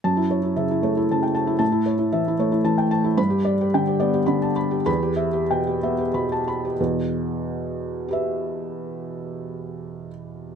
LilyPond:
<<
  \new Staff \with { instrumentName = "Felt piano" } { \time 3/4 \key e \dorian \tempo 4 = 98 << { a''8 r2 r8 | a''8 r2 r8 | b''8 r2 r8 | b''8 r2 r8 |
r2 <g' b' e''>4~ | <g' b' e''>2. | } \\ { r16 e'16 cis''16 e'16 e''16 e'16 cis''16 e'16 a''16 g''16 a''16 e'16 | r16 e'16 cis''16 e'16 e''16 e'16 cis''16 e'16 a''16 g''16 a''16 e'16 | r16 g'16 d''16 g'16 g''16 g'16 d''16 g'16 b''16 a''16 b''16 g'16 | r16 g'16 e''16 g'16 g''16 g'16 e''16 g'16 b''16 a''16 b''16 g'16 |
r2. | r2. | } >> }
  \new Staff \with { instrumentName = "Felt piano" } { \clef bass \time 3/4 \key e \dorian fis,4 cis8 a8 cis4 | a,4 e8 a8 e4 | g,4 d8 b8 d4 | e,4 b,8 b8 b,4 |
<e, b,>2.~ | <e, b,>2. | }
>>